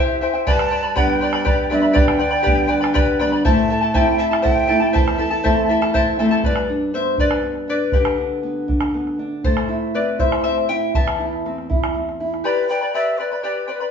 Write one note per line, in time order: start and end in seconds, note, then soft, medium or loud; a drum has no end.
0.00 0.21 E4 medium
0.00 0.21 G4 medium
0.00 0.21 C5 medium
0.00 0.20 E5 medium
0.00 0.23 E5 medium
0.00 0.22 G5 medium
0.21 0.34 E4 medium
0.21 0.33 C5 medium
0.21 0.34 E5 medium
0.21 0.32 G5 medium
0.21 bombo rim soft
0.33 0.47 E4 soft
0.33 0.47 C5 medium
0.33 0.45 G5 medium
0.47 1.92 G2 medium
0.47 0.71 G4 medium
0.47 0.71 B4 medium
0.47 0.71 D5 medium
0.47 0.70 G5 medium
0.47 0.93 A5 loud
0.47 0.71 B5 medium
0.47 bombo low medium
0.59 bombo rim medium
0.71 0.83 B4 medium
0.71 0.82 D5 medium
0.71 0.83 G5 medium
0.71 0.82 B5 medium
0.83 0.95 B4 soft
0.83 0.95 D5 medium
0.83 0.95 B5 soft
0.95 1.44 G3 soft
0.95 1.44 B3 soft
0.95 1.45 D4 medium
0.95 1.21 G4 medium
0.95 1.21 B4 medium
0.95 1.21 D5 medium
0.95 1.20 G5 medium
0.95 1.67 G5 loud
0.95 1.21 B5 medium
0.95 bombo low medium
1.09 bombo rim soft
1.21 1.33 B4 medium
1.21 1.32 D5 medium
1.21 1.33 G5 medium
1.21 1.32 B5 medium
1.33 1.44 B4 soft
1.33 1.44 D5 medium
1.33 1.45 B5 medium
1.33 bombo rim medium
1.45 1.70 G4 medium
1.45 1.69 B4 medium
1.45 1.70 D5 medium
1.45 1.68 G5 medium
1.45 1.71 B5 medium
1.45 bombo low medium
1.70 2.19 G3 medium
1.70 2.19 B3 soft
1.70 2.19 D4 medium
1.70 1.82 B4 medium
1.70 1.81 D5 medium
1.70 1.99 E5 medium
1.70 1.83 G5 medium
1.70 1.81 B5 medium
1.70 bombo rim soft
1.82 1.93 B4 soft
1.82 1.93 D5 soft
1.82 1.93 B5 medium
1.93 3.41 D3 medium
1.93 2.19 G4 medium
1.93 2.18 B4 medium
1.93 2.18 D5 medium
1.93 2.17 G5 medium
1.93 2.19 B5 medium
1.93 bombo low medium
1.97 3.21 G5 medium
2.08 bombo rim medium
2.19 2.31 B4 medium
2.19 2.31 D5 medium
2.19 2.32 G5 medium
2.19 2.30 B5 medium
2.31 2.42 B4 soft
2.31 2.42 D5 medium
2.31 2.43 B5 medium
2.43 2.94 G3 medium
2.43 2.94 D4 medium
2.43 2.69 G4 medium
2.43 2.68 B4 medium
2.43 2.67 D5 medium
2.43 2.66 G5 medium
2.43 2.67 B5 medium
2.43 bombo low medium
2.47 2.94 B3 soft
2.59 bombo rim soft
2.67 2.81 B4 medium
2.67 2.80 D5 medium
2.67 2.81 G5 medium
2.67 2.80 B5 medium
2.81 2.93 B4 soft
2.81 2.93 D5 medium
2.81 2.94 B5 medium
2.81 bombo rim medium
2.94 3.19 G4 medium
2.94 3.19 B4 medium
2.94 3.19 D5 medium
2.94 3.18 G5 medium
2.94 3.20 B5 loud
2.94 bombo low medium
3.19 3.44 G3 medium
3.19 3.45 B3 medium
3.19 3.45 D4 medium
3.19 3.32 B4 medium
3.19 3.32 D5 medium
3.19 3.32 G5 medium
3.19 3.31 B5 medium
3.19 bombo rim soft
3.32 3.45 B4 soft
3.32 3.45 D5 medium
3.32 3.45 B5 medium
3.45 4.91 A2 medium
3.45 3.69 E4 medium
3.45 3.70 A4 medium
3.45 3.70 C5 medium
3.45 3.69 E5 medium
3.45 3.97 A5 loud
3.45 3.70 A5 medium
3.45 bombo low medium
3.70 3.81 E4 medium
3.70 3.81 A4 medium
3.70 3.82 E5 medium
3.70 3.80 A5 medium
3.81 3.94 E4 medium
3.81 3.94 A4 medium
3.81 3.94 A5 medium
3.94 4.43 A3 medium
3.94 4.43 C4 soft
3.94 4.18 E4 medium
3.94 4.43 E4 medium
3.94 4.18 A4 medium
3.94 4.19 C5 medium
3.94 4.17 E5 medium
3.94 4.18 G5 loud
3.94 4.18 A5 medium
3.94 bombo low medium
4.08 bombo rim soft
4.18 4.31 E4 medium
4.18 4.31 A4 medium
4.18 4.31 E5 medium
4.18 4.25 A5 medium
4.18 4.30 A5 medium
4.31 4.42 E4 soft
4.31 4.42 A4 medium
4.31 4.42 A5 medium
4.31 bombo rim medium
4.42 4.67 E4 medium
4.42 4.67 A4 medium
4.42 4.68 C5 medium
4.42 4.66 E5 medium
4.42 4.91 G5 loud
4.42 4.68 A5 medium
4.42 bombo low medium
4.67 5.18 A3 soft
4.67 5.18 C4 soft
4.67 4.81 E4 medium
4.67 5.18 E4 medium
4.67 4.80 A4 medium
4.67 4.81 E5 medium
4.67 4.79 A5 medium
4.67 bombo rim soft
4.80 4.92 E4 soft
4.80 4.93 A4 soft
4.80 4.93 A5 medium
4.93 6.40 E2 medium
4.93 5.18 E4 medium
4.93 5.18 A4 medium
4.93 5.19 C5 medium
4.93 5.17 E5 medium
4.93 6.15 A5 loud
4.93 5.18 A5 medium
4.93 bombo low medium
5.08 bombo rim medium
5.18 5.30 E4 medium
5.18 5.29 A4 medium
5.18 5.31 E5 medium
5.18 5.29 A5 medium
5.30 5.43 E4 soft
5.30 5.43 A4 medium
5.30 5.44 A5 medium
5.44 5.92 A3 medium
5.44 5.92 C4 soft
5.44 5.69 E4 medium
5.44 5.93 E4 medium
5.44 5.69 A4 medium
5.44 5.69 C5 medium
5.44 5.68 E5 medium
5.44 5.69 A5 medium
5.44 bombo low medium
5.69 5.81 E4 medium
5.69 5.81 A4 medium
5.69 5.82 E5 medium
5.69 5.80 A5 medium
5.81 5.94 E4 soft
5.81 5.94 A4 medium
5.81 5.94 A5 medium
5.81 bombo rim soft
5.93 6.18 E4 loud
5.93 6.18 A4 medium
5.93 6.19 C5 medium
5.93 6.17 E5 medium
5.93 6.18 E5 medium
5.93 6.19 A5 medium
5.93 bombo low medium
6.19 6.43 A3 medium
6.19 6.44 C4 soft
6.19 6.31 E4 medium
6.19 6.44 E4 medium
6.19 6.30 A4 medium
6.19 6.43 C5 medium
6.19 6.31 E5 medium
6.19 6.30 A5 medium
6.19 bombo rim soft
6.31 6.44 E4 medium
6.31 6.44 A4 medium
6.31 6.44 A5 medium
6.43 7.90 G2 medium
6.43 6.91 B4 medium
6.43 6.93 D5 medium
6.43 bombo low medium
6.56 bombo rim soft
6.69 6.93 D4 soft
6.94 7.17 B3 soft
6.94 7.17 C5 medium
6.94 7.20 E5 medium
7.17 7.42 D4 soft
7.17 7.66 B4 medium
7.17 7.68 D5 medium
7.17 bombo low medium
7.31 bombo rim soft
7.42 7.67 B3 soft
7.42 bombo rim soft
7.55 bombo rim soft
7.68 7.93 D4 medium
7.68 7.92 B4 medium
7.68 7.95 D5 medium
7.92 9.39 D3 medium
7.92 8.65 G4 medium
7.92 8.65 B4 medium
7.92 bombo low medium
8.05 bombo rim medium
8.18 8.43 D4 soft
8.43 8.68 B3 soft
8.68 8.93 D4 medium
8.68 bombo low medium
8.81 bombo rim soft
8.94 9.18 B3 medium
8.94 bombo rim soft
9.07 bombo rim soft
9.19 9.43 D4 medium
9.44 10.90 A2 medium
9.44 9.91 A4 medium
9.44 9.95 C5 medium
9.44 bombo low medium
9.57 bombo rim medium
9.68 9.93 E4 medium
9.94 10.19 C4 soft
9.94 10.18 B4 soft
9.94 10.20 D5 medium
10.19 10.43 E4 medium
10.19 10.43 C5 medium
10.19 10.43 E5 medium
10.19 bombo low medium
10.32 bombo rim medium
10.44 10.68 C4 soft
10.44 10.68 C5 medium
10.44 10.67 E5 medium
10.44 bombo rim soft
10.58 bombo rim soft
10.69 10.94 E4 soft
10.69 10.93 E5 medium
10.69 10.95 G5 medium
10.95 12.41 E2 medium
10.95 11.91 E5 medium
10.95 11.91 A5 medium
10.95 bombo low medium
11.08 bombo rim medium
11.19 11.44 E4 soft
11.19 bombo rim soft
11.33 bombo rim soft
11.46 11.69 C4 soft
11.46 bombo rim soft
11.58 bombo rim soft
11.70 11.94 E4 medium
11.70 bombo low medium
11.84 bombo rim medium
11.95 12.19 C4 soft
12.09 bombo rim soft
12.20 12.44 E4 soft
12.34 bombo rim soft
12.44 12.69 G4 medium
12.44 12.68 B4 medium
12.44 12.69 B4 medium
12.44 12.70 D5 medium
12.44 12.68 G5 medium
12.44 12.69 B5 medium
12.69 12.82 B4 soft
12.69 12.81 D5 medium
12.69 12.92 G5 medium
12.69 12.82 G5 soft
12.69 12.80 B5 medium
12.81 12.94 B4 soft
12.81 12.94 D5 soft
12.81 12.94 B5 soft
12.94 13.20 G4 medium
12.94 13.18 B4 medium
12.94 13.19 D5 medium
12.94 13.19 E5 medium
12.94 13.19 G5 medium
12.94 13.19 B5 medium
13.18 13.44 B4 medium
13.18 13.31 B4 soft
13.18 13.31 D5 medium
13.18 13.32 G5 soft
13.18 13.30 B5 medium
13.32 13.43 B4 soft
13.32 13.43 D5 soft
13.32 13.43 B5 soft
13.42 13.69 G4 medium
13.42 13.67 B4 medium
13.42 13.67 D5 medium
13.42 13.68 D5 medium
13.42 13.66 G5 medium
13.42 13.68 B5 medium
13.68 13.81 B4 medium
13.68 13.73 C5 medium
13.68 13.80 D5 medium
13.68 13.81 G5 medium
13.68 13.79 B5 medium
13.72 13.91 B4 medium
13.80 13.91 B4 soft
13.80 13.91 D5 soft
13.80 13.91 B5 soft